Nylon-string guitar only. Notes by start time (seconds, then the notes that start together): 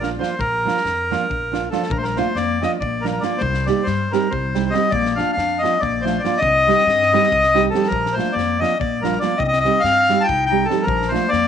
0.01 F3 A#3 D4 F4
0.19 F3 A#3 D4 F4
0.65 F3 A#3 D4 F4
1.11 F3 A#3 D4 F4
1.52 F3 A#3 D4 F4
1.72 F3 A#3 D4 F4
2.17 F3 A#3 D4 F4
2.62 F3 A#3 D4 F4
3.04 F3 A#3 D4 F4
3.22 F3 A#3 D4 F4
3.66 G3 C4 D#4 G4
4.13 G3 C4 D#4 G4
4.55 G3 C4 D#4 G4
4.73 G3 C4 D#4 G4
5.18 F3 A#3 D4 F4
5.63 F3 A#3 D4 F4
6.05 F3 A#3 D4 F4
6.24 F3 A#3 D4 F4
6.67 G3 C4 D#4 G4
7.13 G3 C4 D#4 G4
7.54 G3 C4 D#4 G4
7.74 G3 C4 D#4 G4
8.17 F3 A#3 D4 F4
8.61 F3 A#3 D4 F4
9.03 F3 A#3 D4 F4
9.22 F3 A#3 D4 F4
9.65 G3 C4 D#4 G4
10.09 G3 C4 D#4 G4
10.51 G3 C4 D#4 G4
10.69 G3 C4 D#4 G4
11.12 F3 A#3 D4 F4